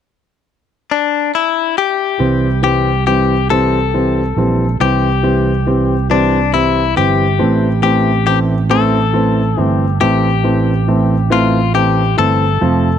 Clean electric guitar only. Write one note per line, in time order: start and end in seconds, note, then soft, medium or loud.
0.91 1.31 D4 medium
1.35 1.78 E4 medium
1.78 2.63 G4 medium
2.64 3.04 G4 medium
3.07 3.50 G4 medium
3.50 4.76 A4 medium
4.81 6.07 G4 medium
6.11 6.51 D4 medium
6.54 6.97 E4 medium
6.97 7.82 G4 medium
7.83 8.25 G4 medium
8.27 8.38 G4 medium
8.71 9.62 A4 medium
9.62 10.00 G4 medium
10.01 11.32 G4 medium
11.32 11.72 F4 medium
11.75 12.18 G4 medium
12.18 12.99 A4 medium